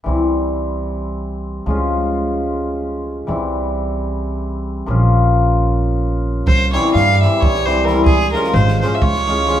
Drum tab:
SD |--------------|--------------|--------------|--------------|
BD |--------------|--------------|--------------|--------------|

SD |--ooooo--oo-o-|-oooooo--oo-o-|
BD |o-------o-----|o-------o-----|